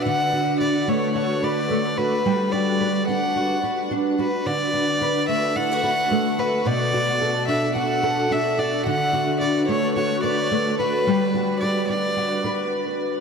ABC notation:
X:1
M:4/4
L:1/16
Q:"Swing 16ths" 1/4=109
K:D
V:1 name="Violin"
f4 d2 c2 c2 d4 B2- | B2 d4 f6 z2 B2 | d6 e2 f6 B2 | d6 e2 f4 e2 d2 |
f4 d2 c2 c2 d4 B2- | B4 d2 d6 z4 |]
V:2 name="Steel-string acoustic guitar"
D,2 F2 B2 A,2 F2 B2 A,2 F2 | G,2 F2 B2 D2 F2 B2 D2 F2 | D,2 F2 B2 A,2 E F B2 A,2 F2 | B,,2 F2 A2 D2 F2 A2 D2 F2 |
D,2 F2 B2 A,2 F2 B2 A,2 F2 | G,2 F2 B2 D2 F2 B2 z4 |]